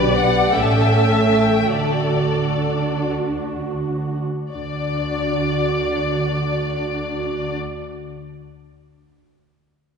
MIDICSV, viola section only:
0, 0, Header, 1, 2, 480
1, 0, Start_track
1, 0, Key_signature, 2, "major"
1, 0, Tempo, 778210
1, 571, Tempo, 860832
1, 1038, Time_signature, 6, 3, 24, 8
1, 1531, Tempo, 938967
1, 2971, Tempo, 918836
1, 5328, End_track
2, 0, Start_track
2, 0, Title_t, "Viola section"
2, 0, Program_c, 0, 48
2, 0, Note_on_c, 0, 62, 53
2, 0, Note_on_c, 0, 67, 46
2, 298, Note_off_c, 0, 62, 0
2, 315, Note_off_c, 0, 67, 0
2, 319, Note_on_c, 0, 61, 52
2, 320, Note_on_c, 0, 69, 57
2, 1035, Note_off_c, 0, 61, 0
2, 1035, Note_off_c, 0, 69, 0
2, 1036, Note_on_c, 0, 62, 43
2, 1036, Note_on_c, 0, 66, 43
2, 2337, Note_off_c, 0, 66, 0
2, 2358, Note_off_c, 0, 62, 0
2, 2491, Note_on_c, 0, 62, 43
2, 2494, Note_on_c, 0, 66, 41
2, 4058, Note_off_c, 0, 62, 0
2, 4061, Note_off_c, 0, 66, 0
2, 5328, End_track
0, 0, End_of_file